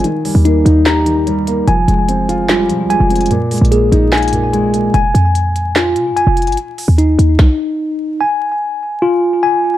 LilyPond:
<<
  \new Staff \with { instrumentName = "Tine electric piano" } { \time 4/4 \key f \minor \tempo 4 = 147 r4 ees'4 bes''2 | aes''2 f'4 aes''4 | r4 aes'4 aes''2 | aes''2 f'4 aes''4 |
r4 ees'2. | aes''2 f'4 aes''4 | }
  \new Staff \with { instrumentName = "Grand piano" } { \clef bass \time 4/4 \key f \minor ees8 g8 bes8 ees'8 g'8 ees8 g8 bes8 | f8 aes8 c'8 f'8 g8 f8 aes8 c'8 | bes,8 aes8 bes8 ees'4 bes,8 aes8 bes8 | r1 |
r1 | r1 | }
  \new Staff \with { instrumentName = "808-style bass" } { \clef bass \time 4/4 \key f \minor r8. ees,8. ees,2~ ees,8 | f,,8 f,,2 c16. f,,16. f,,8. | r8. bes,,8. bes,,2~ bes,,8 | f,,8 f,2 c16. f,16. f,,8 g,,16 |
r8. ees,8. ees,8 r2 | r1 | }
  \new DrumStaff \with { instrumentName = "Drums" } \drummode { \time 4/4 hh8 hho8 hh8 hh8 <hc hh sn>8 hh8 hh8 hh8 | hh8 hh8 hh8 hh8 <hc hh sn>8 hh8 hh8 hh32 hh32 hh32 hh32 | \tuplet 3/2 { hh16 r16 r16 <hh hho>16 hh16 hh16 } hh8 hh8 <hc hh sn>32 hh32 hh32 hh32 hh8 hh8 hh8 | hh8 hh8 hh8 hh8 <hc hh sn>8 hh8 hh8 hh32 hh32 hh32 hh32 |
hh8 hho8 hh8 hh8 <bd sn>4 r4 | r4 r4 r4 r4 | }
>>